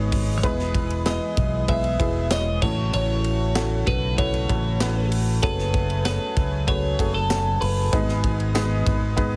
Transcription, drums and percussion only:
0.12 kick medium
0.12 open hi-hat medium
0.12 ride medium
0.43 kick loud
0.43 hi-hat pedal medium
0.43 ride medium
0.59 snare soft
0.74 kick medium
0.74 ride medium
0.90 ride soft
1.06 snare loud
1.06 clap medium
1.06 ride medium
1.06 tambourine medium
1.37 kick loud
1.37 ride medium
1.68 kick medium
1.68 ride medium
1.84 ride soft
2.00 kick medium
2.00 ride medium
2.31 snare loud
2.31 clap loud
2.31 ride medium
2.31 tambourine loud
2.62 kick loud
2.62 crash medium
2.93 hi-hat pedal medium
2.93 ride medium
3.24 ride medium
3.55 snare loud
3.55 clap medium
3.55 ride medium
3.55 tambourine loud
3.87 kick loud
3.87 ride medium
4.18 kick loud
4.18 ride medium
4.34 ride soft
4.49 kick medium
4.49 ride medium
4.80 snare loud
4.80 clap loud
4.80 ride medium
4.80 tambourine loud
5.12 open hi-hat medium
5.12 ride medium
5.43 kick loud
5.43 ride medium
5.58 snare soft
5.74 kick loud
5.74 ride medium
5.90 ride soft
6.05 snare medium
6.05 clap medium
6.05 ride medium
6.05 tambourine medium
6.37 kick loud
6.37 ride medium
6.68 kick loud
6.68 ride medium
6.99 kick medium
6.99 ride medium
7.30 snare loud
7.30 clap loud
7.30 ride medium
7.30 tambourine loud
7.62 open hi-hat medium
7.62 ride medium
7.93 kick loud
7.93 ride medium
8.09 snare soft
8.24 kick loud
8.24 ride medium
8.40 ride soft
8.55 snare loud
8.55 clap medium
8.55 ride medium
8.55 tambourine loud
8.87 kick loud
8.87 ride medium
9.18 kick loud
9.18 ride medium

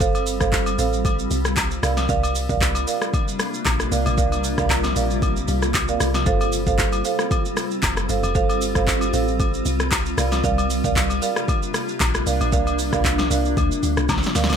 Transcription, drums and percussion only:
0.00 kick loud
0.00 shaker medium
0.15 high agogo medium
0.15 shaker medium
0.27 open hi-hat medium
0.27 shaker loud
0.41 kick medium
0.41 cross-stick medium
0.41 shaker medium
0.52 kick medium
0.52 clap medium
0.52 shaker medium
0.66 high agogo medium
0.66 shaker medium
0.79 open hi-hat medium
0.79 shaker loud
0.93 shaker soft
1.05 kick loud
1.05 high agogo medium
1.05 shaker medium
1.19 shaker medium
1.31 open hi-hat soft
1.31 shaker medium
1.45 cross-stick loud
1.45 shaker medium
1.57 kick loud
1.57 clap loud
1.57 high agogo medium
1.57 low woodblock medium
1.57 shaker medium
1.71 shaker medium
1.83 cross-stick loud
1.83 open hi-hat medium
1.83 shaker loud
1.97 snare medium
1.97 high agogo medium
1.97 shaker medium
2.09 kick loud
2.09 shaker medium
2.23 high agogo medium
2.23 shaker medium
2.35 open hi-hat medium
2.35 shaker loud
2.49 kick medium
2.49 shaker medium
2.61 kick medium
2.61 clap medium
2.61 shaker medium
2.75 high agogo medium
2.75 shaker medium
2.88 open hi-hat medium
2.88 shaker loud
3.02 cross-stick loud
3.02 shaker medium
3.14 kick loud
3.14 high agogo medium
3.14 shaker medium
3.28 shaker medium
3.40 cross-stick loud
3.40 open hi-hat medium
3.40 shaker medium
3.54 shaker medium
3.65 kick loud
3.65 clap loud
3.65 high agogo medium
3.65 low woodblock medium
3.65 shaker medium
3.80 cross-stick loud
3.80 shaker medium
3.92 open hi-hat medium
3.92 shaker medium
4.06 high agogo medium
4.06 shaker medium
4.18 kick loud
4.18 shaker medium
4.32 high agogo medium
4.32 shaker medium
4.44 open hi-hat medium
4.44 shaker loud
4.58 kick loud
4.58 cross-stick medium
4.58 shaker medium
4.70 kick medium
4.70 clap medium
4.70 low woodblock medium
4.70 shaker medium
4.84 snare medium
4.84 high agogo medium
4.84 shaker medium
4.96 open hi-hat medium
4.96 shaker loud
5.10 shaker soft
5.22 kick loud
5.22 high agogo medium
5.22 shaker medium
5.37 shaker medium
5.48 open hi-hat medium
5.48 shaker medium
5.62 cross-stick medium
5.62 shaker medium
5.74 kick loud
5.74 clap loud
5.74 high agogo medium
5.74 shaker loud
5.88 shaker medium
6.00 cross-stick loud
6.00 open hi-hat medium
6.00 shaker loud
6.14 snare medium
6.14 high agogo medium
6.14 shaker medium
6.26 kick loud
6.26 shaker medium
6.41 high agogo medium
6.41 shaker medium
6.53 open hi-hat medium
6.53 shaker loud
6.67 kick medium
6.67 shaker medium
6.78 kick medium
6.78 clap medium
6.78 shaker medium
6.93 high agogo medium
6.93 shaker medium
7.05 open hi-hat medium
7.05 shaker loud
7.19 cross-stick loud
7.19 shaker soft
7.31 kick loud
7.31 high agogo medium
7.31 shaker medium
7.45 shaker medium
7.57 cross-stick loud
7.57 open hi-hat soft
7.57 shaker medium
7.71 shaker medium
7.83 kick loud
7.83 clap loud
7.83 high agogo medium
7.83 low woodblock medium
7.83 shaker medium
7.97 cross-stick loud
7.97 shaker medium
8.09 open hi-hat medium
8.09 shaker medium
8.23 high agogo medium
8.23 shaker medium
8.35 kick loud
8.35 shaker medium
8.50 high agogo medium
8.50 shaker medium
8.62 open hi-hat medium
8.62 shaker loud
8.75 kick medium
8.75 cross-stick medium
8.75 shaker medium
8.87 kick medium
8.87 clap medium
8.87 shaker medium
9.01 high agogo medium
9.01 shaker medium
9.14 open hi-hat medium
9.14 shaker loud
9.28 shaker medium
9.40 kick loud
9.40 high agogo medium
9.40 shaker medium
9.54 shaker medium
9.66 open hi-hat soft
9.66 shaker medium
9.80 cross-stick loud
9.80 shaker medium
9.91 kick loud
9.91 clap loud
9.91 high agogo medium
9.91 low woodblock medium
9.91 shaker medium
10.06 shaker medium
10.18 cross-stick loud
10.18 open hi-hat medium
10.18 shaker loud
10.32 snare medium
10.32 high agogo medium
10.32 shaker medium
10.44 kick loud
10.44 shaker medium
10.58 high agogo medium
10.58 shaker medium
10.70 open hi-hat medium
10.70 shaker loud
10.84 kick medium
10.84 shaker medium
10.96 kick medium
10.96 clap medium
10.96 shaker medium
11.10 high agogo medium
11.10 shaker medium
11.22 open hi-hat medium
11.22 shaker loud
11.36 cross-stick loud
11.36 shaker medium
11.48 kick loud
11.48 high agogo medium
11.48 shaker medium
11.63 shaker medium
11.74 cross-stick loud
11.74 open hi-hat medium
11.74 shaker medium
11.88 shaker medium
12.00 kick loud
12.00 clap loud
12.00 high agogo medium
12.00 low woodblock medium
12.00 shaker medium
12.15 cross-stick loud
12.15 shaker medium
12.27 open hi-hat medium
12.27 shaker loud
12.41 high agogo medium
12.41 shaker medium
12.52 kick loud
12.52 shaker medium
12.67 high agogo medium
12.67 shaker medium
12.79 open hi-hat medium
12.79 shaker loud
12.93 kick loud
12.93 cross-stick medium
12.93 shaker medium
13.05 kick medium
13.05 clap medium
13.05 shaker medium
13.18 snare medium
13.18 high agogo medium
13.18 shaker medium
13.31 open hi-hat medium
13.31 shaker loud
13.45 shaker soft
13.57 kick loud
13.57 high agogo medium
13.57 shaker medium
13.72 shaker medium
13.83 open hi-hat soft
13.83 shaker medium
13.97 cross-stick loud
13.97 shaker medium
14.09 kick loud
14.09 snare medium
14.09 high agogo medium
14.09 low woodblock medium
14.09 shaker medium
14.18 snare medium
14.23 snare medium
14.23 shaker medium
14.35 snare medium
14.35 open hi-hat medium
14.35 shaker loud
14.44 snare loud
14.49 snare loud
14.49 high agogo medium
14.49 shaker medium

